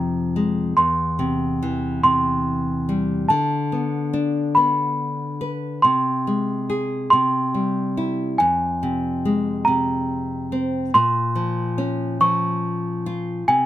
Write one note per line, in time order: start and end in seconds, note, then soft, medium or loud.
0.00 0.73 F2 medium
0.00 0.73 C3 soft
0.00 0.73 F3 soft
0.00 0.74 A#5 medium
0.36 0.76 G#3 soft
0.77 3.26 E2 medium
0.77 2.02 C6 medium
1.19 2.03 C3 soft
1.62 3.26 E3 soft
2.03 3.26 C3 soft
2.03 3.34 C6 medium
2.89 3.29 G3 medium
3.29 5.80 D3 medium
3.29 4.59 A5 medium
3.72 4.56 B3 soft
4.13 5.79 D4 soft
4.55 5.80 B3 soft
4.55 5.87 B5 medium
5.41 5.82 B4 soft
5.82 7.08 C3 medium
5.82 7.07 C6 medium
6.27 7.09 G#3 soft
6.70 7.10 G#4 soft
7.10 8.36 C3 medium
7.10 8.34 C6 medium
7.54 8.37 G3 soft
7.97 8.38 E4 soft
8.38 10.90 F2 medium
8.38 9.62 G#5 medium
8.83 9.66 C3 soft
9.25 10.91 G#3 soft
9.65 10.91 C3 soft
9.65 10.89 A#5 medium
10.52 10.93 C4 soft
10.94 13.43 A#2 medium
10.94 12.25 C6 medium
11.35 12.19 F3 soft
11.78 13.42 C#4 soft
12.21 13.43 F3 medium
12.21 13.51 C#6 medium
13.06 13.46 F4 medium
13.48 13.66 C3 medium
13.48 13.66 G#5 medium